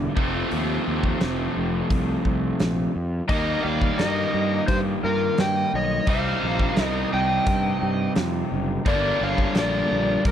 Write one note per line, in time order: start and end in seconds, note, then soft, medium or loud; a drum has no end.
0.00 0.14 G2 medium
0.00 0.15 D3 medium
0.00 0.15 G3 medium
0.00 0.16 A#3 medium
0.00 0.16 D4 medium
0.16 0.42 F1 medium
0.16 2.92 F2 medium
0.16 2.92 C3 medium
0.16 2.93 F3 medium
0.16 2.93 A3 loud
0.16 2.93 C4 medium
0.16 kick loud
0.51 0.77 D#2 medium
0.51 open hi-hat soft
0.88 1.12 D#2 medium
1.03 kick medium
1.21 1.47 F1 medium
1.21 snare loud
1.21 open hi-hat soft
1.57 1.82 F1 medium
1.90 2.16 C2 medium
1.90 kick loud
1.90 open hi-hat soft
2.25 2.50 C2 medium
2.25 kick medium
2.60 2.86 A#1 medium
2.60 snare loud
2.60 open hi-hat soft
2.96 3.21 F2 medium
3.28 3.55 D#2 medium
3.28 6.05 D#3 medium
3.28 6.08 G3 medium
3.28 6.06 A#3 medium
3.28 6.06 D#4 medium
3.28 3.62 A#4 medium
3.28 3.65 D#5 medium
3.28 kick loud
3.28 open hi-hat soft
3.63 3.90 D#2 medium
3.63 3.97 D5 medium
3.63 3.99 F5 medium
3.81 kick medium
3.98 4.24 G2 medium
3.98 4.65 A#4 medium
3.98 4.64 D#5 medium
3.98 snare loud
3.98 open hi-hat soft
4.34 4.59 G2 medium
4.67 4.94 G2 medium
4.67 4.79 G4 medium
4.67 4.77 C5 medium
4.67 kick loud
4.67 open hi-hat medium
5.04 5.29 G2 medium
5.04 5.37 F4 medium
5.04 5.40 A#4 medium
5.38 5.64 G2 medium
5.38 5.71 D#5 medium
5.38 5.75 G5 medium
5.38 snare medium
5.38 open hi-hat medium
5.74 5.99 B1 medium
5.74 6.06 C#5 medium
5.74 6.10 D#5 medium
6.07 6.33 C2 medium
6.07 8.83 C3 medium
6.07 8.84 G3 medium
6.07 8.85 C4 medium
6.07 8.85 D#4 medium
6.07 6.78 C5 medium
6.07 6.84 F5 loud
6.07 kick loud
6.07 open hi-hat soft
6.43 6.68 A#1 medium
6.59 kick medium
6.76 7.03 C2 medium
6.76 7.09 A#4 medium
6.76 snare loud
6.76 open hi-hat soft
6.84 7.13 D#5 loud
7.13 7.38 C2 medium
7.13 8.13 D#5 medium
7.13 8.13 G5 medium
7.46 7.72 G2 medium
7.46 kick loud
7.46 open hi-hat soft
7.82 8.07 G2 medium
8.16 8.42 F2 medium
8.16 snare loud
8.16 open hi-hat soft
8.52 8.77 F#1 medium
8.86 9.11 G1 medium
8.86 10.31 G2 medium
8.86 10.31 D3 medium
8.86 10.31 G3 medium
8.86 10.31 A#3 medium
8.86 10.31 D4 medium
8.86 9.20 A#4 medium
8.86 9.23 D5 medium
8.86 kick loud
8.86 open hi-hat soft
9.21 9.46 G1 medium
9.21 9.54 C#5 medium
9.21 9.55 F5 medium
9.38 kick medium
9.55 9.81 A#1 medium
9.55 10.22 A#4 medium
9.55 10.23 D5 medium
9.55 snare medium
9.55 open hi-hat soft
9.91 10.16 A#1 medium
10.25 10.31 C2 medium
10.25 10.31 G4 medium
10.25 10.31 A#4 medium
10.25 kick loud
10.25 open hi-hat medium